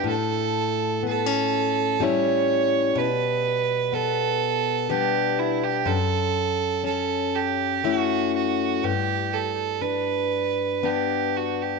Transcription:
<<
  \new Staff \with { instrumentName = "Fiddle" } { \time 3/4 \key a \mixolydian \tempo 4 = 61 a'4 a'4 cis''4 | b'4 a'4 g'8 e'16 g'16 | a'4 a'8 g'8 fis'8 fis'8 | g'8 a'8 b'4 g'8 fis'16 g'16 | }
  \new Staff \with { instrumentName = "Steel-string acoustic guitar" } { \time 3/4 \key a \mixolydian a,4 b16 cis'8. <g cis' e'>4 | b,4 b4 <g b d'>4 | fis,4 cis'4 <a cis' e'>4 | g,4 d'4 <b d'>4 | }
>>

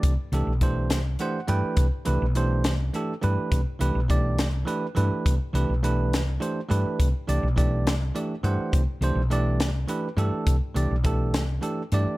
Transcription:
<<
  \new Staff \with { instrumentName = "Tine electric piano" } { \time 6/8 \key c \major \tempo 4. = 69 <e a d' g' d''>8 <e a d' g' a'>8 <e a d' g' c''>8 r8 <e a d' g' c'' fis''>8 <e a d' g' b' g''>8 | r8 <e a d' g' b'>8 <e a d' g' c''>8 r8 <e a d' g' a'>8 <e a d' g' b'>8 | r8 <e a d' g' b'>8 <e a d' g' d''>8 r8 <e a d' g' b'>8 <e a d' g' b'>8 | r8 <e a d' g' b'>8 <e a d' g' b'>8 r8 <e a d' g' c''>8 <e a d' g' b'>8 |
r8 <e a d' g' d''>8 <e a d' g' d''>8 r8 <e a d' g' d''>8 <e a d' g' c'' fis''>8 | r8 <e a d' g' c''>8 <e a d' g' d''>8 r8 <e a d' g' b'>8 <e a d' g' a'>8 | r8 <e a d' g' d''>8 <e a d' g' a'>8 r8 <e a d' g' a'>8 <e a d' g' d''>8 | }
  \new Staff \with { instrumentName = "Fretless electric bass" } { \clef bass \time 6/8 \key c \major c,16 r16 c,16 b,,8. c,8 r8 g,16 r16 | c,16 r16 c,16 b,,8. c,8 r8 g,16 r16 | c,16 r16 c,16 b,,8. c,8 r8 g,16 r16 | c,16 r16 c,16 b,,8. c,8 r8 g,16 r16 |
c,16 r16 c,16 b,,8. c,8 r8 g,16 r16 | c,16 r16 c,16 b,,8. c,8 r8 g,16 r16 | c,16 r16 c,16 b,,8. c,8 r8 g,16 r16 | }
  \new DrumStaff \with { instrumentName = "Drums" } \drummode { \time 6/8 <hh bd>8 hh8 <hh bd>8 <hh sn>8 hh8 hh8 | <hh bd>8 hh8 hh8 <hh sn>8 hh8 hh8 | <hh bd>8 hh8 <hh bd>8 <hh sn>8 hh8 hh8 | <hh bd>8 hh8 hh8 <hh sn>8 hh8 hh8 |
<hh bd>8 hh8 <hh bd>8 <hh sn>8 hh8 hh8 | <hh bd>8 hh8 hh8 <hh sn>8 hh8 hh8 | <hh bd>8 hh8 <hh bd>8 <hh sn>8 hh8 hh8 | }
>>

